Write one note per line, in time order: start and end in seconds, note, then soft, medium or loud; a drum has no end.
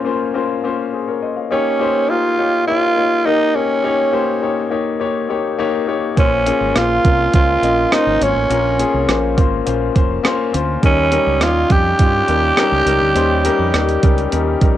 0.00 0.05 A#3 medium
0.00 0.05 C#4 medium
0.00 0.05 F4 medium
0.00 0.93 G#4 medium
0.00 0.06 C5 loud
0.00 1.08 C#5 medium
0.05 0.26 A#3 medium
0.05 0.26 C#4 medium
0.05 0.26 F4 medium
0.05 0.26 C5 medium
0.34 0.55 A#3 medium
0.34 0.55 C#4 medium
0.34 0.55 F4 medium
0.34 0.55 C5 medium
0.64 0.84 A#3 medium
0.64 0.84 C#4 medium
0.64 0.84 F4 medium
0.64 0.85 C5 medium
0.93 1.07 G#4 medium
0.93 1.07 C5 medium
1.08 1.22 A#4 medium
1.08 1.21 C#5 medium
1.22 1.36 C5 medium
1.22 1.36 D#5 medium
1.36 1.50 C#5 soft
1.36 1.64 F5 medium
1.51 1.71 A#3 medium
1.51 2.11 C#4 medium
1.51 1.72 D#4 medium
1.51 1.72 G4 medium
1.51 1.72 C#5 loud
1.79 2.00 A#3 medium
1.79 2.01 D#4 medium
1.79 2.01 G4 medium
1.79 2.01 C5 loud
2.09 2.30 A#3 medium
2.09 2.30 D#4 medium
2.09 2.67 F4 loud
2.09 2.30 G4 medium
2.09 2.30 A#4 medium
2.38 2.59 A#3 medium
2.38 2.59 D#4 medium
2.38 2.59 G4 medium
2.38 2.59 C#5 medium
2.67 2.88 A#3 medium
2.67 2.88 D#4 medium
2.67 3.27 F4 loud
2.67 2.88 G4 medium
2.67 2.89 C#5 medium
2.96 3.17 A#3 medium
2.96 3.17 D#4 medium
2.96 3.17 G4 medium
2.96 3.18 C#5 medium
3.25 3.46 A#3 medium
3.25 3.46 D#4 medium
3.25 3.57 D#4 medium
3.25 3.46 G4 medium
3.25 3.47 A#4 loud
3.54 3.75 A#3 medium
3.54 4.72 C#4 medium
3.54 3.75 D#4 medium
3.54 3.76 G4 medium
3.54 3.76 C#5 medium
3.83 4.04 A#3 medium
3.83 4.04 D#4 medium
3.83 4.05 G4 medium
3.83 4.05 C#5 loud
4.12 4.33 A#3 medium
4.12 4.33 D#4 medium
4.12 4.34 G4 medium
4.12 4.34 C5 loud
4.42 4.62 A#3 medium
4.42 4.63 D#4 medium
4.42 4.63 G4 medium
4.42 4.63 C#5 medium
4.70 4.91 A#3 medium
4.70 4.92 D#4 medium
4.70 4.92 G4 medium
4.70 4.92 C#5 medium
5.00 5.21 A#3 medium
5.00 5.21 D#4 medium
5.00 5.21 G4 medium
5.00 5.21 C#5 medium
5.29 5.50 A#3 medium
5.29 5.50 D#4 medium
5.29 5.50 G4 medium
5.29 5.50 C#5 medium
5.58 5.79 A#3 loud
5.58 5.79 D#4 medium
5.58 5.79 G4 medium
5.58 5.80 C#5 loud
5.87 6.08 A#3 medium
5.87 6.08 D#4 medium
5.87 6.09 G4 medium
5.87 6.09 C#5 medium
6.16 6.50 A#1 medium
6.16 6.37 A#3 medium
6.16 6.37 C#4 medium
6.16 6.78 C#4 medium
6.16 6.38 F4 medium
6.16 6.38 C5 loud
6.16 kick loud
6.16 closed hi-hat medium
6.45 6.66 A#3 medium
6.45 6.67 C#4 medium
6.45 6.67 F4 medium
6.45 6.67 G#4 medium
6.45 closed hi-hat medium
6.60 6.72 G#1 medium
6.75 6.97 A#1 medium
6.75 6.95 A#3 medium
6.75 6.96 C#4 medium
6.75 6.96 F4 medium
6.75 7.34 F4 loud
6.75 6.96 C5 medium
6.75 cross-stick loud
6.75 closed hi-hat medium
7.04 7.27 C2 medium
7.04 7.25 A#3 medium
7.04 7.25 C#4 medium
7.04 7.25 F4 medium
7.04 7.25 A#4 medium
7.04 kick medium
7.04 closed hi-hat medium
7.33 7.56 C#2 medium
7.33 7.54 A#3 medium
7.33 7.54 C#4 medium
7.33 7.54 F4 medium
7.33 7.95 F4 loud
7.33 7.55 C5 medium
7.33 kick medium
7.33 closed hi-hat medium
7.62 7.84 A#1 medium
7.62 7.83 A#3 medium
7.62 7.83 C#4 medium
7.62 7.83 F4 medium
7.62 7.84 D#5 medium
7.62 closed hi-hat medium
7.91 8.12 A#3 medium
7.91 8.12 C#4 medium
7.91 8.24 D#4 medium
7.91 8.12 F4 medium
7.91 8.13 C5 medium
7.91 cross-stick loud
7.91 closed hi-hat medium
8.06 8.17 G#1 medium
8.21 8.32 G#1 medium
8.21 8.41 A#3 medium
8.21 8.42 C#4 medium
8.21 9.38 C#4 medium
8.21 8.42 F4 medium
8.21 8.42 C#5 medium
8.21 closed hi-hat medium
8.35 8.46 A1 medium
8.50 8.83 A#1 loud
8.50 8.70 A#3 medium
8.50 8.71 C#4 medium
8.50 8.71 F4 medium
8.50 8.71 A#4 loud
8.50 closed hi-hat medium
8.79 8.99 A#3 medium
8.79 9.00 C#4 medium
8.79 9.00 F4 medium
8.79 9.00 G#4 medium
8.79 closed hi-hat medium
8.94 9.05 C2 medium
9.08 9.38 A#1 medium
9.08 9.29 A#3 medium
9.08 9.29 C#4 medium
9.08 9.29 F4 medium
9.08 9.29 C5 medium
9.08 cross-stick loud
9.08 closed hi-hat medium
9.37 9.60 G#1 medium
9.37 9.58 A#3 medium
9.37 9.58 C#4 medium
9.37 9.58 F4 medium
9.37 9.58 C5 medium
9.37 kick medium
9.37 closed hi-hat medium
9.66 9.89 A#1 medium
9.66 9.87 A#3 medium
9.66 9.87 C#4 medium
9.66 9.87 F4 medium
9.66 9.87 C5 medium
9.66 closed hi-hat medium
9.95 10.18 F1 medium
9.95 10.16 A#3 medium
9.95 10.16 C#4 medium
9.95 10.16 F4 medium
9.95 10.16 C5 medium
9.95 kick medium
9.95 closed hi-hat medium
10.23 10.45 A#3 loud
10.23 10.45 C#4 loud
10.23 10.45 F4 loud
10.23 10.45 C5 loud
10.23 cross-stick loud
10.23 closed hi-hat medium
10.53 10.76 D2 medium
10.53 10.74 A#3 medium
10.53 10.74 C#4 medium
10.53 10.74 F4 medium
10.53 10.75 C5 loud
10.53 closed hi-hat medium
10.82 11.16 D#2 loud
10.82 11.03 G3 medium
10.82 11.03 C#4 medium
10.82 11.44 C#4 medium
10.82 11.04 D#4 medium
10.82 11.04 A#4 medium
10.82 kick loud
10.82 closed hi-hat medium
11.11 11.32 G3 medium
11.11 11.32 C#4 medium
11.11 11.33 D#4 medium
11.11 11.33 A#4 loud
11.11 closed hi-hat medium
11.27 11.41 C#2 medium
11.41 11.63 D#2 medium
11.41 11.62 G3 medium
11.41 11.62 C#4 medium
11.41 11.62 D#4 medium
11.41 11.73 F4 medium
11.41 11.62 C#5 medium
11.41 cross-stick loud
11.41 closed hi-hat medium
11.69 11.92 F2 medium
11.69 11.90 G3 medium
11.69 11.91 C#4 medium
11.69 11.91 D#4 medium
11.69 11.91 G4 medium
11.69 14.77 G4 loud
11.69 kick medium
11.69 closed hi-hat medium
11.99 12.21 G2 medium
11.99 12.20 G3 medium
11.99 12.20 C#4 medium
11.99 12.20 D#4 medium
11.99 12.20 F4 medium
11.99 kick medium
11.99 closed hi-hat medium
12.28 12.50 D#2 medium
12.28 12.49 G3 medium
12.28 12.49 C#4 medium
12.28 12.49 D#4 medium
12.28 12.49 A#4 medium
12.28 closed hi-hat medium
12.57 12.78 G3 loud
12.57 12.78 C#4 medium
12.57 12.79 D#4 loud
12.57 12.79 A#4 loud
12.57 cross-stick loud
12.57 closed hi-hat medium
12.72 12.83 C#2 medium
12.86 12.97 C#2 medium
12.86 13.07 G3 medium
12.86 13.08 C#4 medium
12.86 13.08 D#4 medium
12.86 13.08 A#4 loud
12.86 closed hi-hat medium
13.01 13.12 D2 medium
13.15 13.48 D#2 loud
13.15 13.36 G3 loud
13.15 13.36 C#4 medium
13.15 13.36 D#4 loud
13.15 13.37 C5 loud
13.15 closed hi-hat medium
13.44 13.65 G3 loud
13.44 13.66 C#4 medium
13.44 13.66 D#4 loud
13.44 13.66 A#4 loud
13.44 closed hi-hat medium
13.59 13.70 F2 medium
13.73 13.96 D#2 medium
13.73 13.94 G3 medium
13.73 13.95 C#4 medium
13.73 13.95 D#4 medium
13.73 13.95 A#4 medium
13.73 cross-stick loud
13.73 closed hi-hat medium
13.89 closed hi-hat soft
14.03 14.25 C#2 medium
14.03 14.24 G3 medium
14.03 14.24 C#4 medium
14.03 14.24 D#4 medium
14.03 14.24 A#4 medium
14.03 kick medium
14.03 closed hi-hat medium
14.18 closed hi-hat soft
14.31 14.54 D#2 medium
14.31 14.53 G3 medium
14.31 14.53 C#4 medium
14.31 14.53 D#4 medium
14.31 14.53 A#4 medium
14.31 closed hi-hat medium
14.61 14.77 A#1 medium
14.61 14.77 G3 medium
14.61 14.77 C#4 medium
14.61 14.77 D#4 medium
14.61 14.77 A#4 medium
14.61 kick medium
14.61 closed hi-hat medium